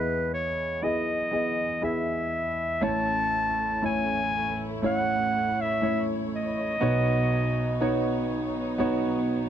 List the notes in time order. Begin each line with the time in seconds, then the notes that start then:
Already playing: E2 E3 B3 E4 G#4 B4 D#5
0.34 C#5
0.82 B3 E4 G#4 D#5
1.31 B3 E4 G#4 D#5
1.81 B3 E4 G#4 E5
2.81 A1 A2 A3 C#4 E4 C#5 A5
3.82 A3 C#4 E4 C#5 G#5
4.82 A3 C#4 E4 C#5 F#5
5.61 E5
5.81 A3 C#4 E4 C#5
6.35 D#5
6.81 B1 B2 B3 D#4 F#4 C#5
7.80 B3 D#4 F#4 C#5
8.78 B3 D#4 F#4 C#5